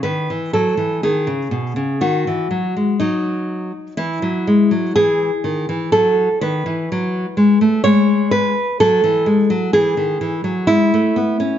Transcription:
\new Staff \with { instrumentName = "Nylon-string guitar" } { \clef bass \time 4/4 \key e \major \tempo 4 = 62 << { b'8 a'8 gis'4 fis'4 dis'4 | e'4 gis'4 a'8 b'4. | cis''8 b'8 a'4 gis'4 e'4 | } \\ { dis16 e16 fis16 e16 dis16 cis16 b,16 cis16 dis16 e16 fis16 gis16 fis4 | e16 fis16 gis16 fis16 e8 dis16 e16 fis8 dis16 e16 fis8 gis16 a16 | gis4 fis16 e16 gis16 fis16 e16 dis16 e16 fis16 gis16 a16 b16 cis'16 | } >> }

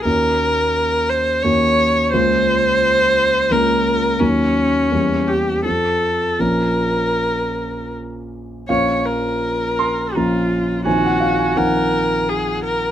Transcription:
<<
  \new Staff \with { instrumentName = "Viola" } { \time 3/4 \key bes \minor \tempo 4 = 85 bes'4. c''8 des''4 | c''2 bes'4 | des'4. g'8 a'4 | bes'2 r4 |
des''8 bes'4. f'4 | ges'4 bes'4 aes'8 bes'8 | }
  \new Staff \with { instrumentName = "Grand piano" } { \time 3/4 \key bes \minor r2. | r2. | r2. | r2. |
f''4. c'''8 bes''4 | aes''16 ges''16 f''16 aes''16 ges''2 | }
  \new Staff \with { instrumentName = "Grand piano" } { \time 3/4 \key bes \minor <ees, bes des' ges'>2 <ees, bes des' ges'>4 | <des, bes des' f'>2 <des, bes des' f'>4 | <ees, ges bes ees'>4 <e, g bes cis'>4 <f, f c'>4 | <bes,, f bes des'>2. |
<bes,, f bes des'>2 <bes,, f bes des'>4 | <bes,, ees c' ees'>4 <bes,, ees c' ees'>2 | }
>>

